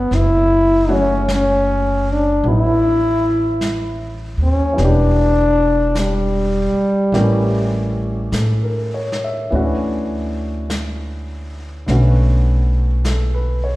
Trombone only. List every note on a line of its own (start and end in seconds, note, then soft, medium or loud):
0.00 0.17 B3 medium
0.15 0.93 E4 medium
0.92 1.30 C#4 medium
1.34 2.14 C#4 medium
2.12 2.48 D4 medium
2.51 4.01 E4 medium
4.43 4.85 C#4 medium
4.83 6.02 D4 medium
6.00 8.35 G3 medium